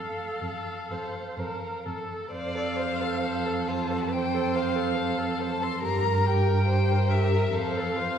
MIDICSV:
0, 0, Header, 1, 5, 480
1, 0, Start_track
1, 0, Key_signature, -1, "major"
1, 0, Tempo, 960000
1, 1161, Tempo, 921659
1, 1162, Time_signature, 4, 2, 24, 8
1, 1641, Tempo, 859599
1, 4399, End_track
2, 0, Start_track
2, 0, Title_t, "Violin"
2, 0, Program_c, 0, 40
2, 0, Note_on_c, 0, 77, 39
2, 929, Note_off_c, 0, 77, 0
2, 1168, Note_on_c, 0, 77, 75
2, 1895, Note_on_c, 0, 81, 63
2, 1903, Note_off_c, 0, 77, 0
2, 2132, Note_on_c, 0, 79, 74
2, 2140, Note_off_c, 0, 81, 0
2, 2370, Note_on_c, 0, 77, 65
2, 2378, Note_off_c, 0, 79, 0
2, 2836, Note_on_c, 0, 81, 74
2, 2844, Note_off_c, 0, 77, 0
2, 2975, Note_on_c, 0, 84, 68
2, 2983, Note_off_c, 0, 81, 0
2, 3083, Note_off_c, 0, 84, 0
2, 3086, Note_on_c, 0, 82, 77
2, 3325, Note_on_c, 0, 79, 74
2, 3333, Note_off_c, 0, 82, 0
2, 3798, Note_on_c, 0, 76, 63
2, 3806, Note_off_c, 0, 79, 0
2, 4046, Note_on_c, 0, 77, 71
2, 4054, Note_off_c, 0, 76, 0
2, 4399, Note_off_c, 0, 77, 0
2, 4399, End_track
3, 0, Start_track
3, 0, Title_t, "Viola"
3, 0, Program_c, 1, 41
3, 0, Note_on_c, 1, 69, 41
3, 457, Note_on_c, 1, 72, 33
3, 464, Note_off_c, 1, 69, 0
3, 695, Note_on_c, 1, 70, 36
3, 702, Note_off_c, 1, 72, 0
3, 927, Note_on_c, 1, 69, 33
3, 934, Note_off_c, 1, 70, 0
3, 1157, Note_off_c, 1, 69, 0
3, 1160, Note_on_c, 1, 72, 42
3, 1280, Note_on_c, 1, 69, 42
3, 1288, Note_off_c, 1, 72, 0
3, 1403, Note_on_c, 1, 72, 47
3, 1410, Note_off_c, 1, 69, 0
3, 1519, Note_on_c, 1, 69, 45
3, 1527, Note_off_c, 1, 72, 0
3, 1628, Note_off_c, 1, 69, 0
3, 1632, Note_on_c, 1, 72, 45
3, 1762, Note_on_c, 1, 69, 41
3, 1770, Note_off_c, 1, 72, 0
3, 1887, Note_on_c, 1, 72, 43
3, 1896, Note_off_c, 1, 69, 0
3, 2007, Note_on_c, 1, 69, 41
3, 2015, Note_off_c, 1, 72, 0
3, 2127, Note_off_c, 1, 69, 0
3, 2135, Note_on_c, 1, 72, 45
3, 2254, Note_on_c, 1, 69, 42
3, 2263, Note_off_c, 1, 72, 0
3, 2371, Note_on_c, 1, 72, 37
3, 2380, Note_off_c, 1, 69, 0
3, 2486, Note_on_c, 1, 69, 41
3, 2494, Note_off_c, 1, 72, 0
3, 2602, Note_off_c, 1, 69, 0
3, 2606, Note_on_c, 1, 72, 41
3, 2724, Note_on_c, 1, 69, 43
3, 2732, Note_off_c, 1, 72, 0
3, 2847, Note_on_c, 1, 72, 44
3, 2855, Note_off_c, 1, 69, 0
3, 2964, Note_on_c, 1, 69, 40
3, 2973, Note_off_c, 1, 72, 0
3, 3079, Note_off_c, 1, 69, 0
3, 3082, Note_on_c, 1, 67, 47
3, 3203, Note_on_c, 1, 70, 42
3, 3212, Note_off_c, 1, 67, 0
3, 3324, Note_on_c, 1, 67, 43
3, 3333, Note_off_c, 1, 70, 0
3, 3448, Note_on_c, 1, 70, 47
3, 3456, Note_off_c, 1, 67, 0
3, 3561, Note_off_c, 1, 70, 0
3, 3564, Note_on_c, 1, 67, 42
3, 3690, Note_on_c, 1, 70, 41
3, 3698, Note_off_c, 1, 67, 0
3, 3816, Note_on_c, 1, 67, 45
3, 3825, Note_off_c, 1, 70, 0
3, 3934, Note_on_c, 1, 70, 41
3, 3942, Note_off_c, 1, 67, 0
3, 4040, Note_off_c, 1, 70, 0
3, 4044, Note_on_c, 1, 72, 47
3, 4169, Note_on_c, 1, 69, 44
3, 4178, Note_off_c, 1, 72, 0
3, 4282, Note_on_c, 1, 72, 42
3, 4291, Note_off_c, 1, 69, 0
3, 4399, Note_off_c, 1, 72, 0
3, 4399, End_track
4, 0, Start_track
4, 0, Title_t, "Violin"
4, 0, Program_c, 2, 40
4, 0, Note_on_c, 2, 69, 29
4, 190, Note_off_c, 2, 69, 0
4, 193, Note_on_c, 2, 69, 36
4, 436, Note_off_c, 2, 69, 0
4, 443, Note_on_c, 2, 69, 31
4, 680, Note_off_c, 2, 69, 0
4, 684, Note_on_c, 2, 69, 29
4, 921, Note_off_c, 2, 69, 0
4, 927, Note_on_c, 2, 69, 34
4, 1152, Note_off_c, 2, 69, 0
4, 1155, Note_on_c, 2, 74, 57
4, 1389, Note_on_c, 2, 72, 53
4, 1397, Note_off_c, 2, 74, 0
4, 1621, Note_off_c, 2, 72, 0
4, 1624, Note_on_c, 2, 69, 53
4, 1884, Note_on_c, 2, 65, 49
4, 1892, Note_off_c, 2, 69, 0
4, 2119, Note_on_c, 2, 72, 63
4, 2127, Note_off_c, 2, 65, 0
4, 2596, Note_on_c, 2, 69, 51
4, 2605, Note_off_c, 2, 72, 0
4, 3078, Note_off_c, 2, 69, 0
4, 3081, Note_on_c, 2, 70, 56
4, 3553, Note_off_c, 2, 70, 0
4, 3559, Note_on_c, 2, 72, 51
4, 3804, Note_on_c, 2, 70, 59
4, 3812, Note_off_c, 2, 72, 0
4, 4034, Note_on_c, 2, 69, 58
4, 4042, Note_off_c, 2, 70, 0
4, 4274, Note_on_c, 2, 65, 57
4, 4282, Note_off_c, 2, 69, 0
4, 4399, Note_off_c, 2, 65, 0
4, 4399, End_track
5, 0, Start_track
5, 0, Title_t, "Cello"
5, 0, Program_c, 3, 42
5, 208, Note_on_c, 3, 41, 35
5, 248, Note_off_c, 3, 41, 0
5, 452, Note_on_c, 3, 41, 31
5, 492, Note_off_c, 3, 41, 0
5, 688, Note_on_c, 3, 41, 35
5, 728, Note_off_c, 3, 41, 0
5, 931, Note_on_c, 3, 41, 32
5, 971, Note_off_c, 3, 41, 0
5, 1160, Note_on_c, 3, 41, 57
5, 3080, Note_on_c, 3, 43, 54
5, 3088, Note_off_c, 3, 41, 0
5, 4038, Note_off_c, 3, 43, 0
5, 4041, Note_on_c, 3, 41, 50
5, 4399, Note_off_c, 3, 41, 0
5, 4399, End_track
0, 0, End_of_file